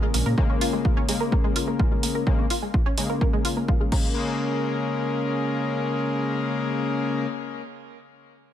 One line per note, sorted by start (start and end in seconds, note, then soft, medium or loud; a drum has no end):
0.00 0.35 C#3 medium
0.00 0.35 G#3 medium
0.00 0.10 G#3 medium
0.00 0.35 A#3 medium
0.00 downlifter medium
0.14 0.23 A#1 medium
0.14 0.18 A#3 medium
0.14 open hi-hat loud
0.26 0.35 A#2 medium
0.26 0.37 A#4 medium
0.38 1.06 C#3 loud
0.38 1.06 G#3 medium
0.38 0.45 A#3 medium
0.38 1.06 A#3 loud
0.38 kick loud
0.50 0.57 C#4 medium
0.61 0.69 F4 loud
0.61 open hi-hat loud
0.73 0.80 G#3 medium
0.85 0.92 F4 medium
0.85 kick loud
0.97 1.08 C#4 loud
1.09 2.24 C#3 medium
1.09 1.20 G#3 medium
1.09 2.24 G#3 medium
1.09 2.24 A#3 loud
1.09 open hi-hat loud
1.21 1.31 A#4 medium
1.32 1.40 A#3 loud
1.32 kick loud
1.44 1.51 G#3 loud
1.56 1.63 F4 medium
1.56 open hi-hat loud
1.68 1.75 A#3 medium
1.79 1.87 F4 medium
1.79 kick loud
1.91 1.99 G#3 medium
2.03 2.07 A#3 medium
2.03 open hi-hat loud
2.15 2.26 A#4 medium
2.27 2.45 C#3 loud
2.27 2.45 G#3 medium
2.27 2.45 A#3 loud
2.27 2.34 A#3 medium
2.27 kick loud
2.39 2.46 C#4 medium
2.50 2.58 F4 loud
2.50 open hi-hat loud
2.62 2.70 G#3 medium
2.74 2.81 F4 medium
2.74 kick loud
2.86 2.97 C#4 loud
2.98 3.91 C#3 medium
2.98 3.91 G#3 medium
2.98 3.09 G#3 medium
2.98 3.91 A#3 medium
2.98 open hi-hat loud
3.10 3.20 A#4 medium
3.21 3.29 A#3 loud
3.21 kick loud
3.33 3.40 G#3 loud
3.45 3.52 F4 loud
3.45 open hi-hat loud
3.57 3.64 A#3 medium
3.68 3.76 F4 medium
3.68 kick loud
3.80 3.88 G#3 medium
3.92 7.26 C#3 medium
3.92 7.26 G#3 medium
3.92 7.26 A#3 medium
3.92 4.36 A#3 medium
3.92 kick loud
3.92 crash medium